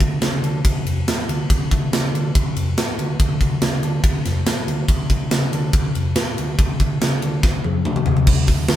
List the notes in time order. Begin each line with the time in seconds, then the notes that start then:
0.00 D2, kick, ride
0.22 C#3, snare, ride
0.42 D3, ride
0.65 D2, kick, ride
0.85 F2, ride
1.07 A2, snare, ride
1.28 D2, ride
1.50 D2, kick, ride
1.71 D2, kick, ride
1.92 C#3, snare, ride
2.13 D3, ride
2.35 D2, kick, ride
2.56 F2, ride
2.78 A2, snare, ride
2.98 D2, ride
3.20 D2, kick, ride
3.41 D2, kick, ride
3.62 C#3, snare, ride
3.83 D3, ride
4.03 D2, kick, ride
4.25 F2, snare, ride
4.46 A2, snare, ride
4.66 D2, ride
4.88 D2, kick, ride
5.10 D2, kick, ride
5.31 C#3, snare, ride
5.52 D3, ride
5.73 D2, kick, ride
5.95 F2, ride
6.16 A2, snare, ride
6.38 D2, ride
6.59 D2, kick, ride
6.80 D2, kick, ride
7.01 C#3, snare, ride
7.22 D3, ride
7.43 D2, kick, snare
7.64 F2, high tom
7.85 A2, mid tom
7.96 mid tom
8.06 D2, floor tom
8.17 floor tom
8.27 D2, kick, crash
8.47 D2, kick, open hi-hat
8.68 D2, snare, open hi-hat